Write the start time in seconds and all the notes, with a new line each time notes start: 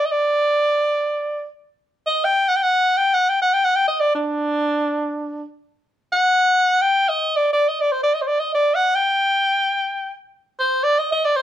0.05 D#5
0.11 D5
2.06 D#5
2.24 G5
2.48 F#5
2.56 G5
2.63 F#5
2.97 G5
3.14 F#5
3.29 G5
3.42 F#5
3.53 G5
3.65 F#5
3.75 G5
3.88 D#5
4.00 D5
4.14 D4
6.12 F#5
6.81 G5
7.09 D#5
7.36 D5
7.53 D5
7.68 D#5
7.81 D5
7.92 C5
8.03 D5
8.14 D#5
8.22 C5
8.27 D5
8.39 D#5
8.54 D5
8.75 F#5
8.95 G5
10.59 C5
10.83 D5
10.99 D#5
11.12 D#5
11.25 D5
11.36 C5